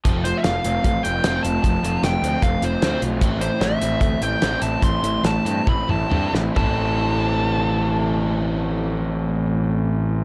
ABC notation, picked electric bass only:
X:1
M:4/4
L:1/8
Q:1/4=145
K:Am
V:1 name="Picked electric bass" clef=bass
F,,,2 F,,, F,,, A,,, F,,, F,,, F,,, | F,,, F,,, F,,, D,, F,,, F,,, D,, B,,, | A,,,2 A,,, A,,, D,, A,,, A,,, A,,, | A,,, A,,, A,,, G,, A,,, A,,, G,, A,,, |
A,,,8- | A,,,8 |]